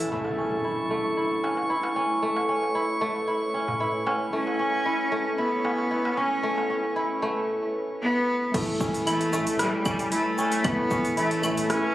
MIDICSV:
0, 0, Header, 1, 10, 480
1, 0, Start_track
1, 0, Key_signature, 3, "major"
1, 0, Tempo, 526316
1, 109, Time_signature, 4, 2, 24, 8
1, 10896, End_track
2, 0, Start_track
2, 0, Title_t, "Synth texture"
2, 0, Program_c, 0, 99
2, 0, Note_on_c, 0, 81, 96
2, 101, Note_on_c, 0, 85, 87
2, 119, Note_off_c, 0, 81, 0
2, 6825, Note_off_c, 0, 85, 0
2, 10896, End_track
3, 0, Start_track
3, 0, Title_t, "Synth drone"
3, 0, Program_c, 1, 95
3, 0, Note_on_c, 1, 76, 89
3, 97, Note_off_c, 1, 76, 0
3, 107, Note_on_c, 1, 64, 61
3, 108, Note_on_c, 1, 71, 61
3, 109, Note_on_c, 1, 73, 79
3, 110, Note_on_c, 1, 57, 67
3, 6791, Note_off_c, 1, 64, 0
3, 6792, Note_off_c, 1, 71, 0
3, 6792, Note_off_c, 1, 73, 0
3, 6793, Note_off_c, 1, 57, 0
3, 7792, Note_on_c, 1, 71, 76
3, 7793, Note_on_c, 1, 57, 77
3, 7793, Note_on_c, 1, 73, 85
3, 7795, Note_on_c, 1, 64, 70
3, 10896, Note_off_c, 1, 57, 0
3, 10896, Note_off_c, 1, 64, 0
3, 10896, Note_off_c, 1, 71, 0
3, 10896, Note_off_c, 1, 73, 0
3, 10896, End_track
4, 0, Start_track
4, 0, Title_t, "Kora"
4, 0, Program_c, 2, 46
4, 0, Note_on_c, 2, 52, 80
4, 0, Note_on_c, 2, 57, 94
4, 0, Note_on_c, 2, 61, 76
4, 0, Note_on_c, 2, 64, 74
4, 104, Note_off_c, 2, 57, 0
4, 108, Note_on_c, 2, 57, 75
4, 154, Note_off_c, 2, 52, 0
4, 343, Note_off_c, 2, 61, 0
4, 347, Note_on_c, 2, 61, 67
4, 583, Note_off_c, 2, 64, 0
4, 587, Note_on_c, 2, 64, 68
4, 821, Note_off_c, 2, 57, 0
4, 825, Note_on_c, 2, 57, 81
4, 1063, Note_off_c, 2, 64, 0
4, 1067, Note_on_c, 2, 64, 67
4, 1304, Note_off_c, 2, 61, 0
4, 1308, Note_on_c, 2, 61, 61
4, 1544, Note_off_c, 2, 64, 0
4, 1548, Note_on_c, 2, 64, 74
4, 1784, Note_off_c, 2, 61, 0
4, 1788, Note_on_c, 2, 61, 80
4, 2025, Note_off_c, 2, 57, 0
4, 2028, Note_on_c, 2, 57, 73
4, 2265, Note_off_c, 2, 61, 0
4, 2269, Note_on_c, 2, 61, 62
4, 2504, Note_off_c, 2, 64, 0
4, 2507, Note_on_c, 2, 64, 73
4, 2743, Note_off_c, 2, 57, 0
4, 2747, Note_on_c, 2, 57, 89
4, 2983, Note_off_c, 2, 64, 0
4, 2987, Note_on_c, 2, 64, 71
4, 3226, Note_off_c, 2, 61, 0
4, 3229, Note_on_c, 2, 61, 64
4, 3464, Note_off_c, 2, 64, 0
4, 3468, Note_on_c, 2, 64, 72
4, 3703, Note_off_c, 2, 61, 0
4, 3706, Note_on_c, 2, 61, 83
4, 3944, Note_off_c, 2, 57, 0
4, 3947, Note_on_c, 2, 57, 73
4, 4185, Note_off_c, 2, 61, 0
4, 4188, Note_on_c, 2, 61, 67
4, 4425, Note_off_c, 2, 64, 0
4, 4429, Note_on_c, 2, 64, 78
4, 4663, Note_off_c, 2, 57, 0
4, 4667, Note_on_c, 2, 57, 88
4, 4904, Note_off_c, 2, 64, 0
4, 4908, Note_on_c, 2, 64, 74
4, 5144, Note_off_c, 2, 61, 0
4, 5147, Note_on_c, 2, 61, 65
4, 5384, Note_off_c, 2, 64, 0
4, 5388, Note_on_c, 2, 64, 73
4, 5625, Note_off_c, 2, 61, 0
4, 5629, Note_on_c, 2, 61, 85
4, 5864, Note_off_c, 2, 57, 0
4, 5867, Note_on_c, 2, 57, 79
4, 6106, Note_off_c, 2, 61, 0
4, 6110, Note_on_c, 2, 61, 64
4, 6344, Note_off_c, 2, 64, 0
4, 6347, Note_on_c, 2, 64, 76
4, 6584, Note_off_c, 2, 57, 0
4, 6587, Note_on_c, 2, 57, 92
4, 7695, Note_off_c, 2, 61, 0
4, 7777, Note_off_c, 2, 64, 0
4, 7787, Note_off_c, 2, 57, 0
4, 7791, Note_on_c, 2, 57, 89
4, 8029, Note_on_c, 2, 61, 72
4, 8268, Note_on_c, 2, 64, 84
4, 8504, Note_off_c, 2, 57, 0
4, 8508, Note_on_c, 2, 57, 105
4, 8748, Note_off_c, 2, 64, 0
4, 8752, Note_on_c, 2, 64, 76
4, 8986, Note_off_c, 2, 61, 0
4, 8989, Note_on_c, 2, 61, 74
4, 9227, Note_off_c, 2, 64, 0
4, 9231, Note_on_c, 2, 64, 82
4, 9466, Note_off_c, 2, 61, 0
4, 9469, Note_on_c, 2, 61, 93
4, 9705, Note_off_c, 2, 57, 0
4, 9708, Note_on_c, 2, 57, 88
4, 9945, Note_off_c, 2, 61, 0
4, 9948, Note_on_c, 2, 61, 78
4, 10184, Note_off_c, 2, 64, 0
4, 10188, Note_on_c, 2, 64, 88
4, 10425, Note_off_c, 2, 57, 0
4, 10429, Note_on_c, 2, 57, 104
4, 10667, Note_off_c, 2, 64, 0
4, 10671, Note_on_c, 2, 64, 86
4, 10896, Note_off_c, 2, 57, 0
4, 10896, Note_off_c, 2, 61, 0
4, 10896, Note_off_c, 2, 64, 0
4, 10896, End_track
5, 0, Start_track
5, 0, Title_t, "Tine electric piano"
5, 0, Program_c, 3, 4
5, 0, Control_c, 3, 64, 127
5, 0, Note_on_c, 3, 57, 85
5, 0, Note_on_c, 3, 61, 78
5, 0, Note_on_c, 3, 64, 99
5, 87, Note_off_c, 3, 57, 0
5, 87, Note_on_c, 3, 57, 60
5, 105, Note_off_c, 3, 61, 0
5, 105, Note_on_c, 3, 61, 59
5, 121, Control_c, 3, 64, 0
5, 122, Note_off_c, 3, 64, 0
5, 123, Note_on_c, 3, 64, 65
5, 277, Control_c, 3, 64, 127
5, 3911, Note_off_c, 3, 57, 0
5, 3920, Note_off_c, 3, 61, 0
5, 3928, Note_off_c, 3, 64, 0
5, 3929, Note_on_c, 3, 57, 61
5, 3948, Note_on_c, 3, 61, 57
5, 3965, Note_on_c, 3, 64, 68
5, 6819, Note_off_c, 3, 57, 0
5, 6828, Note_off_c, 3, 61, 0
5, 6837, Note_off_c, 3, 64, 0
5, 7768, Note_on_c, 3, 57, 79
5, 7786, Note_on_c, 3, 61, 76
5, 7802, Control_c, 3, 64, 0
5, 7804, Note_on_c, 3, 64, 95
5, 7939, Control_c, 3, 64, 127
5, 8471, Note_off_c, 3, 57, 0
5, 8480, Note_off_c, 3, 61, 0
5, 8489, Note_off_c, 3, 64, 0
5, 8489, Note_on_c, 3, 57, 73
5, 8508, Note_on_c, 3, 61, 67
5, 8525, Note_on_c, 3, 64, 85
5, 9671, Note_off_c, 3, 57, 0
5, 9681, Note_off_c, 3, 61, 0
5, 9690, Note_off_c, 3, 64, 0
5, 9691, Note_on_c, 3, 57, 77
5, 9711, Note_on_c, 3, 61, 73
5, 9729, Note_on_c, 3, 64, 85
5, 10393, Note_off_c, 3, 57, 0
5, 10403, Note_off_c, 3, 61, 0
5, 10412, Note_off_c, 3, 64, 0
5, 10415, Note_on_c, 3, 57, 83
5, 10434, Note_on_c, 3, 61, 83
5, 10450, Note_on_c, 3, 64, 99
5, 10896, Note_off_c, 3, 57, 0
5, 10896, Note_off_c, 3, 61, 0
5, 10896, Note_off_c, 3, 64, 0
5, 10896, End_track
6, 0, Start_track
6, 0, Title_t, "Cello"
6, 0, Program_c, 4, 42
6, 3949, Note_on_c, 4, 61, 107
6, 4873, Note_off_c, 4, 61, 0
6, 4910, Note_on_c, 4, 59, 95
6, 5631, Note_on_c, 4, 61, 101
6, 5645, Note_off_c, 4, 59, 0
6, 6350, Note_off_c, 4, 61, 0
6, 7310, Note_on_c, 4, 59, 109
6, 7756, Note_off_c, 4, 59, 0
6, 8271, Note_on_c, 4, 57, 89
6, 8716, Note_off_c, 4, 57, 0
6, 8753, Note_on_c, 4, 55, 89
6, 8815, Note_on_c, 4, 57, 74
6, 8828, Note_off_c, 4, 55, 0
6, 8884, Note_on_c, 4, 55, 98
6, 8898, Note_off_c, 4, 57, 0
6, 9226, Note_off_c, 4, 55, 0
6, 9232, Note_on_c, 4, 57, 104
6, 9713, Note_on_c, 4, 59, 110
6, 9727, Note_off_c, 4, 57, 0
6, 10188, Note_off_c, 4, 59, 0
6, 10194, Note_on_c, 4, 57, 98
6, 10638, Note_off_c, 4, 57, 0
6, 10672, Note_on_c, 4, 61, 124
6, 10896, Note_off_c, 4, 61, 0
6, 10896, End_track
7, 0, Start_track
7, 0, Title_t, "Sub bass"
7, 0, Program_c, 5, 38
7, 7791, Note_on_c, 5, 33, 100
7, 7958, Note_off_c, 5, 33, 0
7, 8031, Note_on_c, 5, 28, 94
7, 8153, Note_on_c, 5, 33, 92
7, 8166, Note_off_c, 5, 28, 0
7, 8570, Note_off_c, 5, 33, 0
7, 8634, Note_on_c, 5, 33, 82
7, 8712, Note_off_c, 5, 33, 0
7, 9950, Note_on_c, 5, 28, 99
7, 10071, Note_on_c, 5, 33, 104
7, 10085, Note_off_c, 5, 28, 0
7, 10489, Note_off_c, 5, 33, 0
7, 10555, Note_on_c, 5, 33, 84
7, 10633, Note_off_c, 5, 33, 0
7, 10896, End_track
8, 0, Start_track
8, 0, Title_t, "Impact"
8, 0, Program_c, 6, 103
8, 108, Note_on_c, 6, 60, 60
8, 2028, Note_off_c, 6, 60, 0
8, 10896, End_track
9, 0, Start_track
9, 0, Title_t, "Darbuka"
9, 225, Note_on_c, 9, 63, 62
9, 316, Note_off_c, 9, 63, 0
9, 471, Note_on_c, 9, 62, 45
9, 562, Note_off_c, 9, 62, 0
9, 829, Note_on_c, 9, 62, 43
9, 921, Note_off_c, 9, 62, 0
9, 1194, Note_on_c, 9, 62, 30
9, 1285, Note_off_c, 9, 62, 0
9, 1312, Note_on_c, 9, 63, 67
9, 1403, Note_off_c, 9, 63, 0
9, 1433, Note_on_c, 9, 63, 54
9, 1524, Note_off_c, 9, 63, 0
9, 1672, Note_on_c, 9, 63, 65
9, 1764, Note_off_c, 9, 63, 0
9, 2157, Note_on_c, 9, 63, 63
9, 2248, Note_off_c, 9, 63, 0
9, 2401, Note_on_c, 9, 62, 48
9, 2492, Note_off_c, 9, 62, 0
9, 2745, Note_on_c, 9, 62, 48
9, 2836, Note_off_c, 9, 62, 0
9, 2878, Note_on_c, 9, 63, 34
9, 2970, Note_off_c, 9, 63, 0
9, 3356, Note_on_c, 9, 63, 53
9, 3359, Note_on_c, 9, 64, 77
9, 3447, Note_off_c, 9, 63, 0
9, 3451, Note_off_c, 9, 64, 0
9, 3711, Note_on_c, 9, 63, 72
9, 3802, Note_off_c, 9, 63, 0
9, 4078, Note_on_c, 9, 63, 61
9, 4169, Note_off_c, 9, 63, 0
9, 4317, Note_on_c, 9, 62, 40
9, 4408, Note_off_c, 9, 62, 0
9, 4672, Note_on_c, 9, 62, 40
9, 4763, Note_off_c, 9, 62, 0
9, 5033, Note_on_c, 9, 62, 29
9, 5124, Note_off_c, 9, 62, 0
9, 5150, Note_on_c, 9, 63, 76
9, 5241, Note_off_c, 9, 63, 0
9, 5275, Note_on_c, 9, 63, 50
9, 5366, Note_off_c, 9, 63, 0
9, 5520, Note_on_c, 9, 63, 73
9, 5611, Note_off_c, 9, 63, 0
9, 5998, Note_on_c, 9, 63, 57
9, 6090, Note_off_c, 9, 63, 0
9, 6236, Note_on_c, 9, 62, 45
9, 6327, Note_off_c, 9, 62, 0
9, 6593, Note_on_c, 9, 62, 43
9, 6684, Note_off_c, 9, 62, 0
9, 6719, Note_on_c, 9, 63, 30
9, 6810, Note_off_c, 9, 63, 0
9, 10896, End_track
10, 0, Start_track
10, 0, Title_t, "Drums"
10, 7791, Note_on_c, 9, 36, 111
10, 7792, Note_on_c, 9, 46, 57
10, 7792, Note_on_c, 9, 49, 101
10, 7793, Note_on_c, 9, 82, 32
10, 7882, Note_off_c, 9, 36, 0
10, 7883, Note_off_c, 9, 46, 0
10, 7883, Note_off_c, 9, 49, 0
10, 7884, Note_off_c, 9, 82, 0
10, 8031, Note_on_c, 9, 36, 107
10, 8031, Note_on_c, 9, 82, 74
10, 8122, Note_off_c, 9, 36, 0
10, 8122, Note_off_c, 9, 82, 0
10, 8157, Note_on_c, 9, 46, 44
10, 8158, Note_on_c, 9, 82, 45
10, 8248, Note_off_c, 9, 46, 0
10, 8249, Note_off_c, 9, 82, 0
10, 8272, Note_on_c, 9, 46, 58
10, 8272, Note_on_c, 9, 75, 78
10, 8273, Note_on_c, 9, 82, 33
10, 8363, Note_off_c, 9, 46, 0
10, 8363, Note_off_c, 9, 75, 0
10, 8364, Note_off_c, 9, 82, 0
10, 8397, Note_on_c, 9, 46, 34
10, 8488, Note_off_c, 9, 46, 0
10, 8510, Note_on_c, 9, 82, 77
10, 8601, Note_off_c, 9, 82, 0
10, 8635, Note_on_c, 9, 46, 47
10, 8635, Note_on_c, 9, 82, 46
10, 8726, Note_off_c, 9, 46, 0
10, 8727, Note_off_c, 9, 82, 0
10, 8749, Note_on_c, 9, 37, 81
10, 8749, Note_on_c, 9, 46, 61
10, 8750, Note_on_c, 9, 82, 33
10, 8840, Note_off_c, 9, 37, 0
10, 8840, Note_off_c, 9, 46, 0
10, 8841, Note_off_c, 9, 82, 0
10, 8988, Note_on_c, 9, 75, 81
10, 8989, Note_on_c, 9, 82, 78
10, 8990, Note_on_c, 9, 36, 102
10, 9079, Note_off_c, 9, 75, 0
10, 9080, Note_off_c, 9, 82, 0
10, 9081, Note_off_c, 9, 36, 0
10, 9113, Note_on_c, 9, 46, 47
10, 9114, Note_on_c, 9, 82, 45
10, 9204, Note_off_c, 9, 46, 0
10, 9205, Note_off_c, 9, 82, 0
10, 9227, Note_on_c, 9, 46, 59
10, 9228, Note_on_c, 9, 82, 34
10, 9318, Note_off_c, 9, 46, 0
10, 9319, Note_off_c, 9, 82, 0
10, 9468, Note_on_c, 9, 82, 69
10, 9559, Note_off_c, 9, 82, 0
10, 9591, Note_on_c, 9, 46, 41
10, 9592, Note_on_c, 9, 82, 40
10, 9683, Note_off_c, 9, 46, 0
10, 9683, Note_off_c, 9, 82, 0
10, 9707, Note_on_c, 9, 46, 55
10, 9707, Note_on_c, 9, 75, 78
10, 9708, Note_on_c, 9, 82, 36
10, 9710, Note_on_c, 9, 36, 118
10, 9798, Note_off_c, 9, 46, 0
10, 9798, Note_off_c, 9, 75, 0
10, 9799, Note_off_c, 9, 82, 0
10, 9801, Note_off_c, 9, 36, 0
10, 9948, Note_on_c, 9, 82, 83
10, 9950, Note_on_c, 9, 36, 101
10, 10040, Note_off_c, 9, 82, 0
10, 10041, Note_off_c, 9, 36, 0
10, 10075, Note_on_c, 9, 46, 47
10, 10075, Note_on_c, 9, 82, 47
10, 10166, Note_off_c, 9, 46, 0
10, 10167, Note_off_c, 9, 82, 0
10, 10189, Note_on_c, 9, 46, 53
10, 10190, Note_on_c, 9, 82, 33
10, 10281, Note_off_c, 9, 46, 0
10, 10281, Note_off_c, 9, 82, 0
10, 10315, Note_on_c, 9, 46, 34
10, 10406, Note_off_c, 9, 46, 0
10, 10428, Note_on_c, 9, 75, 79
10, 10429, Note_on_c, 9, 82, 84
10, 10519, Note_off_c, 9, 75, 0
10, 10520, Note_off_c, 9, 82, 0
10, 10556, Note_on_c, 9, 46, 44
10, 10557, Note_on_c, 9, 82, 46
10, 10647, Note_off_c, 9, 46, 0
10, 10648, Note_off_c, 9, 82, 0
10, 10670, Note_on_c, 9, 37, 91
10, 10670, Note_on_c, 9, 46, 59
10, 10670, Note_on_c, 9, 82, 36
10, 10761, Note_off_c, 9, 37, 0
10, 10761, Note_off_c, 9, 46, 0
10, 10762, Note_off_c, 9, 82, 0
10, 10896, End_track
0, 0, End_of_file